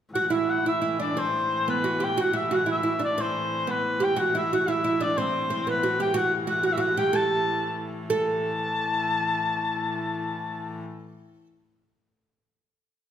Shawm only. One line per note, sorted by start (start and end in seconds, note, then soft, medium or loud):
0.14 0.27 F#5 medium
0.27 0.33 F#5 medium
0.32 0.51 E5 medium
0.50 0.66 F#5 medium
0.68 0.98 E5 medium
1.01 1.20 D5 medium
1.19 1.68 C5 medium
1.70 2.06 B4 medium
2.04 2.23 G5 medium
2.21 2.36 F#5 medium
2.37 2.56 E5 medium
2.54 2.69 F#5 medium
2.72 3.01 E5 medium
3.04 3.22 D5 medium
3.21 3.72 C5 medium
3.70 4.05 B4 medium
4.04 4.21 G5 medium
4.19 4.35 F#5 medium
4.38 4.52 E5 medium
4.54 4.71 F#5 medium
4.70 5.04 E5 medium
5.02 5.19 D5 medium
5.18 5.67 C5 medium
5.70 5.99 B4 medium
6.02 6.19 G5 medium
6.17 6.33 F#5 medium
6.49 6.64 F#5 medium
6.66 6.74 F#5 medium
6.73 6.82 E5 medium
6.81 7.00 F#5 medium
6.98 7.17 G5 medium
7.16 7.80 A5 medium
8.11 10.78 A5 medium